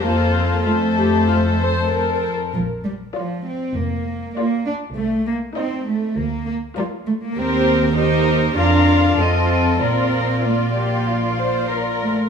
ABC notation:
X:1
M:4/4
L:1/16
Q:1/4=98
K:Bb
V:1 name="Violin section"
c4 c8- c2 z2 | z4 d4 z4 d4 | z4 e4 z4 d4 | c4 c4 f4 e4 |
d4 d8- d2 z2 |]
V:2 name="Violin section"
A4 A8- A2 z2 | z4 d4 z4 d4 | z4 c4 z4 B4 | B4 B4 B4 A4 |
B4 F2 G2 F2 c2 B4 |]
V:3 name="Viola section"
F4 F2 G2 F2 c2 B4 | z4 F4 z4 F4 | z4 E4 z4 F4 | G4 G4 F4 F4 |
F4 F8- F2 z2 |]
V:4 name="Cello section"
B,4 A,8 z4 | F,2 G,2 F,2 C2 B,4 B,2 D2 | A,2 B,2 C2 A,2 B,2 B,2 G,2 A, B, | C4 E4 D4 C4 |
C4 B,8 z2 A,2 |]
V:5 name="Double bass section" clef=bass
F,,12- F,,2 z2 | B,,,4 z4 F,,,4 z4 | C,,4 z4 D,,4 z4 | E,,8 F,,4 F,,4 |
B,,,12- B,,,2 z2 |]